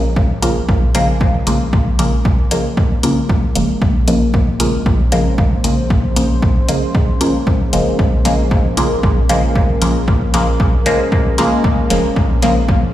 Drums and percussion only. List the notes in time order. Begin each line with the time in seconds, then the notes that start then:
0.16 kick
0.42 closed hi-hat
0.69 kick
0.95 closed hi-hat
1.21 kick
1.47 closed hi-hat
1.73 kick
1.99 closed hi-hat
2.25 kick
2.51 closed hi-hat
2.77 kick
3.03 closed hi-hat
3.29 kick
3.55 closed hi-hat
3.82 kick
4.08 closed hi-hat
4.34 kick
4.60 closed hi-hat
4.86 kick
5.12 closed hi-hat
5.38 kick
5.64 closed hi-hat
5.90 kick
6.16 closed hi-hat
6.42 kick
6.69 closed hi-hat
6.95 kick
7.21 closed hi-hat
7.47 kick
7.73 closed hi-hat
7.99 kick
8.25 closed hi-hat
8.51 kick
8.77 closed hi-hat
9.03 kick
9.29 closed hi-hat
9.56 kick
9.82 closed hi-hat
10.08 kick
10.34 closed hi-hat
10.60 kick
10.86 closed hi-hat
11.12 kick
11.38 closed hi-hat
11.64 kick
11.90 closed hi-hat
12.16 kick
12.42 closed hi-hat
12.69 kick